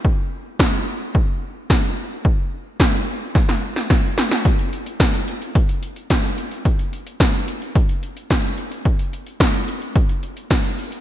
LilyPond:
\new DrumStaff \with { instrumentName = "Drums" } \drummode { \time 4/4 \tempo 4 = 109 bd4 <bd sn>4 bd4 <bd sn>4 | bd4 <bd sn>4 <bd sn>16 sn8 sn16 <bd sn>8 sn16 sn16 | <hh bd>16 hh16 hh16 hh16 <hh bd sn>16 hh16 hh16 hh16 <hh bd>16 hh16 hh16 hh16 <hh bd sn>16 hh16 hh16 hh16 | <hh bd>16 hh16 hh16 hh16 <hh bd sn>16 hh16 hh16 hh16 <hh bd>16 hh16 hh16 hh16 <hh bd sn>16 hh16 hh16 hh16 |
<hh bd>16 hh16 hh16 hh16 <hh bd sn>16 hh16 hh16 hh16 <hh bd>16 hh16 hh16 hh16 <hh bd sn>16 hh16 hho16 hh16 | }